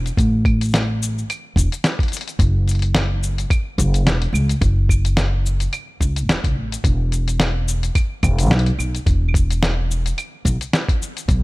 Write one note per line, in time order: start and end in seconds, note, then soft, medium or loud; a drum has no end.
0.06 closed hi-hat soft
0.06 cabasa soft
0.17 1.21 A1 medium
0.17 kick loud
0.17 closed hi-hat medium
0.17 cabasa soft
0.45 kick loud
0.45 closed hi-hat soft
0.45 claves medium
0.61 closed hi-hat soft
0.61 cabasa soft
0.64 cabasa soft
0.71 cabasa soft
0.73 snare loud
0.73 closed hi-hat medium
0.73 cabasa soft
0.75 cabasa soft
1.02 cabasa medium
1.18 cabasa soft
1.30 closed hi-hat medium
1.30 cabasa soft
1.30 claves medium
1.56 1.66 E1 loud
1.56 kick medium
1.56 closed hi-hat soft
1.56 cabasa medium
1.72 closed hi-hat soft
1.72 cabasa soft
1.84 snare loud
1.84 closed hi-hat medium
1.84 cabasa soft
1.99 kick loud
1.99 closed hi-hat soft
2.03 closed hi-hat soft
2.08 closed hi-hat soft
2.12 closed hi-hat soft
2.12 cabasa medium
2.17 closed hi-hat soft
2.21 closed hi-hat soft
2.28 closed hi-hat soft
2.28 cabasa soft
2.39 3.43 F#1 loud
2.39 kick loud
2.39 closed hi-hat medium
2.39 cabasa soft
2.68 closed hi-hat soft
2.68 cabasa medium
2.71 closed hi-hat soft
2.75 closed hi-hat soft
2.79 closed hi-hat soft
2.82 closed hi-hat soft
2.95 snare loud
2.95 closed hi-hat medium
2.95 cabasa soft
3.23 cabasa medium
3.38 closed hi-hat soft
3.38 cabasa soft
3.50 kick loud
3.50 closed hi-hat medium
3.50 cabasa soft
3.50 claves medium
3.78 4.05 F#1 loud
3.78 kick medium
3.78 closed hi-hat soft
3.78 cabasa medium
3.94 closed hi-hat soft
3.94 cabasa soft
4.05 4.25 E1 loud
4.05 snare loud
4.05 closed hi-hat medium
4.05 cabasa soft
4.22 closed hi-hat soft
4.33 4.52 C#2 medium
4.33 cabasa medium
4.33 claves medium
4.49 closed hi-hat soft
4.49 cabasa soft
4.61 5.66 F#1 loud
4.61 kick loud
4.61 closed hi-hat medium
4.61 cabasa soft
4.89 kick medium
4.89 cabasa medium
4.89 claves medium
5.05 closed hi-hat soft
5.05 cabasa soft
5.17 snare loud
5.17 closed hi-hat medium
5.17 cabasa soft
5.46 cabasa medium
5.60 closed hi-hat soft
5.60 cabasa soft
5.73 closed hi-hat medium
5.73 cabasa soft
5.73 claves medium
6.00 6.28 C#2 medium
6.00 kick medium
6.00 closed hi-hat soft
6.00 cabasa medium
6.16 closed hi-hat soft
6.16 cabasa soft
6.28 6.38 E1 loud
6.28 snare loud
6.28 closed hi-hat medium
6.28 cabasa soft
6.44 6.56 C#2 medium
6.44 kick loud
6.44 closed hi-hat soft
6.56 6.75 A1 loud
6.72 closed hi-hat soft
6.72 cabasa medium
6.84 7.88 E1 medium
6.84 kick loud
6.84 closed hi-hat medium
6.84 cabasa soft
7.12 closed hi-hat soft
7.12 cabasa medium
7.28 closed hi-hat soft
7.28 cabasa soft
7.40 snare loud
7.40 closed hi-hat medium
7.40 cabasa soft
7.68 cabasa medium
7.83 closed hi-hat soft
7.83 cabasa soft
7.95 kick loud
7.95 closed hi-hat medium
7.95 cabasa soft
7.95 claves medium
8.23 8.50 E1 loud
8.23 kick medium
8.23 closed hi-hat soft
8.23 cabasa medium
8.23 claves medium
8.39 closed hi-hat medium
8.39 cabasa soft
8.42 cabasa soft
8.50 8.69 B1 medium
8.50 snare loud
8.50 cabasa soft
8.59 closed hi-hat medium
8.66 closed hi-hat soft
8.78 8.97 B1 medium
8.78 cabasa medium
8.78 claves medium
8.95 closed hi-hat soft
8.95 cabasa soft
9.06 10.10 E1 loud
9.06 kick loud
9.06 closed hi-hat medium
9.06 cabasa soft
9.29 claves medium
9.34 kick loud
9.34 closed hi-hat soft
9.34 cabasa medium
9.51 closed hi-hat soft
9.51 cabasa soft
9.63 snare loud
9.63 closed hi-hat medium
9.63 cabasa soft
9.91 cabasa medium
10.06 closed hi-hat soft
10.06 cabasa soft
10.18 closed hi-hat medium
10.18 cabasa soft
10.18 claves medium
10.45 10.55 B1 loud
10.45 kick medium
10.45 closed hi-hat soft
10.45 cabasa medium
10.61 closed hi-hat soft
10.61 cabasa medium
10.73 snare loud
10.73 closed hi-hat medium
10.73 cabasa soft
10.89 kick loud
10.89 closed hi-hat soft
11.02 cabasa medium
11.17 closed hi-hat soft
11.17 cabasa soft
11.28 11.43 B1 loud
11.28 kick loud
11.28 closed hi-hat medium
11.28 cabasa soft